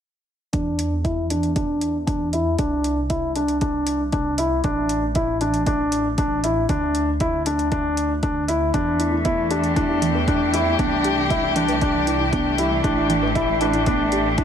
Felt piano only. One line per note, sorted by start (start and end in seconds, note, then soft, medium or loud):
0.53 0.92 D4 medium
1.04 1.24 E4 medium
1.30 1.50 D4 medium
1.56 1.95 D4 medium
2.07 2.27 D4 medium
2.33 2.53 E4 medium
2.58 2.98 D4 medium
3.10 3.29 E4 medium
3.36 3.55 D4 medium
3.61 4.01 D4 medium
4.12 4.32 D4 medium
4.38 4.58 E4 medium
4.64 5.03 D4 medium
5.16 5.35 E4 medium
5.41 5.60 D4 medium
5.67 6.06 D4 medium
6.18 6.37 D4 medium
6.44 6.63 E4 medium
6.70 7.09 D4 medium
7.21 7.40 E4 medium
7.46 7.66 D4 medium
7.72 8.11 D4 medium
8.23 8.42 D4 medium
8.48 8.68 E4 medium
8.74 9.13 D4 medium
9.25 9.45 E4 medium
9.51 9.70 D4 medium
9.76 10.16 D4 medium
10.28 10.47 D4 medium
10.53 10.73 E4 medium
10.79 11.18 D4 medium
11.30 11.50 E4 medium
11.56 11.76 D4 medium
11.82 12.21 D4 medium
12.32 12.52 D4 medium
12.58 12.78 E4 medium
12.84 13.23 D4 medium
13.35 13.55 E4 medium
13.61 13.81 D4 medium
13.87 14.26 D4 medium
14.38 14.44 D4 medium